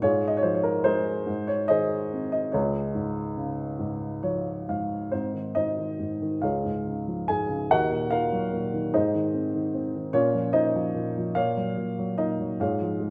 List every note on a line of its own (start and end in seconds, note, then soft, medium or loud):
0.02 1.24 G#2 medium
0.02 1.25 F4 medium
0.02 0.84 G#4 medium
0.02 0.27 C#5 medium
0.28 0.37 D#5 medium
0.37 0.47 C#5 medium
0.43 1.26 F3 medium
0.43 0.54 C5 medium
0.55 0.64 C#5 medium
0.63 0.84 A#4 medium
0.84 1.27 G#3 medium
0.84 2.08 D#4 medium
0.84 1.68 G#4 medium
0.84 1.51 C5 medium
1.27 2.49 G#2 medium
1.47 1.70 C#5 medium
1.68 2.51 D#3 soft
1.68 2.50 G#4 medium
1.68 2.50 C5 medium
1.68 2.28 D#5 medium
2.14 2.53 C4 soft
2.32 2.54 D#5 medium
2.52 5.08 C#2 medium
2.52 4.65 F4 medium
2.52 4.64 G#4 medium
2.52 4.21 C#5 medium
2.95 3.78 G#2 medium
3.37 5.08 C#3 soft
3.79 4.67 G#2 medium
4.23 5.09 F3 medium
4.23 4.64 C#5 medium
4.69 5.11 G#2 soft
4.69 5.10 F5 medium
5.12 5.54 G#2 medium
5.12 5.54 C4 soft
5.12 5.54 D#4 soft
5.12 5.55 C5 medium
5.34 5.77 D#3 soft
5.55 5.98 G#2 soft
5.55 6.39 D#4 medium
5.55 6.39 C5 soft
5.55 6.45 D#5 medium
5.78 6.20 D#3 soft
5.99 6.41 G#2 soft
6.22 6.42 D#3 soft
6.42 7.67 C#2 medium
6.42 7.24 F4 soft
6.42 7.24 G#4 soft
6.42 7.24 C#5 soft
6.42 7.30 F5 medium
6.64 7.27 G#2 soft
6.87 7.48 C#3 soft
7.08 7.69 F3 soft
7.28 7.69 G#2 soft
7.28 7.68 G#4 medium
7.28 7.72 G#5 medium
7.49 7.70 C#3 soft
7.71 8.90 D#2 medium
7.71 8.10 F#4 medium
7.71 8.10 A#4 medium
7.71 8.10 D#5 medium
7.71 8.10 F#5 medium
7.91 8.52 A#2 soft
8.11 8.72 D#3 soft
8.11 8.89 F4 medium
8.11 8.90 A#4 medium
8.11 8.96 F5 medium
8.33 8.92 F#3 medium
8.53 8.93 A#2 soft
8.74 8.93 D#3 medium
8.94 10.11 G#2 medium
8.94 9.80 D#4 medium
8.94 9.80 G#4 soft
8.94 9.80 C5 medium
8.94 9.80 D#5 medium
9.15 9.53 D#3 medium
9.34 9.73 C4 soft
9.55 9.94 D#3 medium
9.74 10.13 C4 soft
9.95 10.14 D#3 soft
10.13 10.53 A#2 medium
10.13 10.51 C#4 medium
10.13 10.51 F4 medium
10.13 10.51 C#5 medium
10.35 10.74 F3 medium
10.53 10.94 A#2 medium
10.53 11.32 D#4 medium
10.53 11.32 C5 medium
10.53 11.38 D#5 medium
10.76 11.16 F3 medium
10.95 11.34 A#2 medium
11.18 11.37 F3 soft
11.35 11.77 A#2 medium
11.35 12.15 F4 medium
11.35 12.15 C#5 medium
11.35 12.15 F5 medium
11.57 11.97 F#3 soft
11.78 12.18 A#2 soft
11.99 12.38 F#3 medium
12.18 12.59 A#2 soft
12.18 12.57 D#4 medium
12.18 12.61 D#5 medium
12.40 12.60 F#3 soft
12.60 13.10 G#2 medium
12.60 13.10 F4 medium
12.60 13.10 G#4 medium
12.60 13.10 C#5 soft
12.60 13.10 F5 medium
12.82 13.10 F3 soft
13.00 13.10 G#3 soft